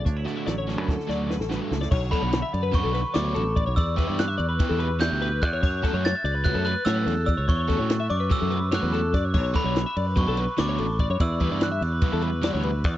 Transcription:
<<
  \new Staff \with { instrumentName = "Glockenspiel" } { \time 9/8 \key b \minor \tempo 4. = 97 r1 r8 | r8 b''4. cis'''4 d'''4. | e'''4 fis'''2 g'''4 fis'''8~ | fis'''8 r8 a'''4 fis'''8 fis'''8 e'''4 e'''8 |
cis'''4. d'''8 e'''4 fis'''4 r8 | r8 b''4. cis'''4 d'''4. | e'''4 fis'''2. r8 | }
  \new Staff \with { instrumentName = "Clean electric guitar" } { \time 9/8 \key b \minor cis''8 d''16 e''16 d''16 cis''8 b'16 a'8 d''8 b'16 a'16 b'16 a'8 d''16 | cis''8 a'16 cis''8 e''16 d''16 b'8 a'16 b'8 d''16 cis''16 a'8 d''16 cis''16 | d''8 b'16 d''8 e''16 d''16 b'8 a'16 b'8 d''16 cis''16 b'8 d''16 cis''16 | cis''8 a'16 cis''8 e''16 d''16 b'8 a'16 b'8 cis''16 b'16 a'8 d''16 cis''16 |
cis''8 a'16 cis''8 e''16 d''16 b'8 a'16 b'8 cis''16 b'16 a'8 d''16 cis''16 | cis''8 a'16 cis''8 e''16 d''16 b'8 a'16 b'8 d''16 cis''16 a'8 d''16 cis''16 | d''8 b'16 d''8 e''16 d''16 b'8 a'16 b'8 d''16 cis''16 b'8 d''16 cis''16 | }
  \new Staff \with { instrumentName = "Overdriven electric guitar" } { \time 9/8 \key b \minor r8 <fis a d' fis'>8 r8 <fis a d' fis'>8 r8 <fis a d' fis'>8 r8 <fis a d' fis'>8 r8 | r8 <fis b d' fis'>8 r4 <fis b d' fis'>8 r8 <fis b d' fis'>8 r4 | r8 <e b e' g'>8 r4 <e b e' g'>8 r8 <e b e' g'>8 r4 | r8 <fis a cis' fis'>8 r4 <fis a cis' fis'>8 r8 <fis a cis' fis'>8 r4 |
r8 <fis a cis' fis'>8 r4 <fis a cis' fis'>8 r8 <fis a cis' fis'>8 r4 | r8 <fis b d' fis'>8 r4 <fis b d' fis'>8 r8 <fis b d' fis'>8 r4 | r8 <e g b e'>8 r4 <e g b e'>8 r8 <e g b e'>8 r4 | }
  \new Staff \with { instrumentName = "Clean electric guitar" } { \clef bass \time 9/8 \key b \minor << { d'16 e'8. fis8 cis'4 fis2~ | fis1~ fis8 | r1 r8 | r1 r8 |
r1 r8 | r1 r8 | r1 r8 | } \\ { <d, d>8 d4. d4 fis,8 g,8 a,8 | r1 r8 | r1 r8 | r1 r8 |
r1 r8 | r1 r8 | r1 r8 | } >> }
  \new Staff \with { instrumentName = "Fingered electric bass" } { \clef bass \time 9/8 \key b \minor d,8 r8 a,,8. fis,8 r16 d,8. a,,8 r16 cis,8 | b,,8 r16 b,,8 r16 fis,8. b,,8 r16 d,8 a,,8. b,,16 | e,8. g,8. e,8 r16 e,4 d,8. e,8 | fis,8 r16 fis,8 r16 cis,8. fis,8 r16 a,8 e,8. cis,16 |
e,8. a,8. fis,8 r16 fis,4 e,8. fis,8 | b,,8 r16 b,,8 r16 fis,8. b,,8 r16 d,8 a,,8. fis,16 | e,8. g,8. e,8 r16 e,4 d,8. e,8 | }
  \new DrumStaff \with { instrumentName = "Drums" } \drummode { \time 9/8 <hh bd>8 hh8 <hh sn>8 sn8 <bd sn>16 sn16 sn8 sn16 sn16 sn8 sn16 sn16 | <cymc bd>8 <bd cymr sn>8 <cymr sn>8 cymr8 <bd cymr sn>8 <cymr sn>8 <cymr sn>8 cymr8 <bd cymr>8 | <bd cymr>8 <bd cymr sn>8 <cymr sn>8 cymr8 <bd cymr sn>8 cymr8 <cymr sn>8 <cymr sn>8 <bd cymr>8 | <cymc bd>8 <bd cymr sn>8 <cymr sn>8 cymr8 <bd cymr>8 cymr8 <cymr sn>8 <cymr sn>8 <bd cymr>8 |
<bd cymr>8 <bd cymr sn>8 <cymr sn>8 cymr8 <bd cymr>8 cymr8 <cymr sn>8 <cymr sn>8 <bd cymr sn>8 | <cymc bd>8 <bd cymr sn>8 <cymr sn>8 cymr8 <bd cymr>8 cymr8 <cymr sn>8 cymr8 <bd cymr>8 | <bd cymr>8 <bd cymr>8 <cymr sn>8 <cymr sn>8 <bd cymr>8 cymr8 <cymr sn>8 cymr8 <bd cymr sn>8 | }
>>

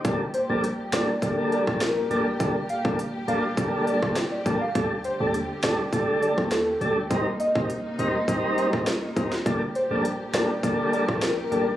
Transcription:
<<
  \new Staff \with { instrumentName = "Soft synth lead" } { \time 4/4 \key g \minor \tempo 4 = 102 r8 c''16 r8. d''8 r8 d''16 r16 bes'8. r16 | r8 f''16 r8. f''8 r8 d''16 r8 d''16 r16 f''16 | r8 c''16 r8. d''8 r8 d''16 r16 a'8. r16 | r8 ees''16 r8. ees''8 r8 c''16 r4 r16 |
r8 c''16 r8. d''8 r8 d''16 r16 bes'8. r16 | }
  \new Staff \with { instrumentName = "Tonewheel organ" } { \time 4/4 \key g \minor <g bes d' a'>16 r8 <g bes d' a'>16 r8 <g bes d' a'>16 r16 <g bes d' a'>8. <g bes d' a'>16 r8 <g bes d' a'>16 r16 | <g bes d' a'>16 r8 <g bes d' a'>16 r8 <g bes d' a'>16 r16 <g bes d' a'>8. <g bes d' a'>16 r8 <g bes d' a'>16 r16 | <g a d' a'>16 r8 <g a d' a'>16 r8 <g a d' a'>16 r16 <g a d' a'>8. <g a d' a'>16 r8 <g a d' a'>16 r16 | <g c' ees' bes'>16 r8 <g c' ees' bes'>16 r8 <g c' ees' bes'>16 r16 <g c' ees' bes'>8. <g c' ees' bes'>16 r8 <g c' ees' bes'>16 r16 |
<g bes d' a'>16 r8 <g bes d' a'>16 r8 <g bes d' a'>16 r16 <g bes d' a'>8. <g bes d' a'>16 r8 <g bes d' a'>16 r16 | }
  \new Staff \with { instrumentName = "String section" } { \clef bass \time 4/4 \key g \minor << { <g g'>1~ | <g g'>1~ | <g g'>1 | <bes ees'>1 |
<g g'>1 | } \\ { bes,1~ | bes,1 | d1 | c1 |
bes,1 | } >> }
  \new Staff \with { instrumentName = "808-style bass" } { \clef bass \time 4/4 \key g \minor g,,8 r16 bes,,8 r16 a,,16 r16 g,,8. bes,,8. a,,8 | g,,8 r16 g,,8 r16 a,,16 r16 g,,8. g,,8 r16 bes,,16 r16 | d,8 r16 ees,8 r16 d,16 r16 c,8. ees,8. d,8 | c,8 r16 c,8 r16 d,16 r16 c,8. c,8 r16 ees,16 r16 |
g,,8 r16 bes,,8 r16 a,,16 r16 g,,8. bes,,8. a,,8 | }
  \new DrumStaff \with { instrumentName = "Drums" } \drummode { \time 4/4 <hh bd>8 hh8 hh8 <hh ss sn>8 <hh bd>8 hh16 <bd ss>16 <hh ss sn>8 hh8 | <hh bd>8 hh16 bd16 hh8 hh8 <hh bd>8 hh16 <bd ss>16 <hh ss sn>8 <hh bd>8 | <hh bd>8 hh8 hh8 <hh ss sn>8 <hh bd>8 hh16 <bd ss>16 <hh ss sn>8 hh8 | <hh bd>8 hh16 bd16 hh8 hh8 <hh bd>8 hh16 <bd ss>16 <hh ss sn>8 <hh bd>16 sn16 |
<hh bd>8 hh8 hh8 <hh ss sn>8 <hh bd>8 hh16 <bd ss>16 <hh ss sn>8 hh8 | }
>>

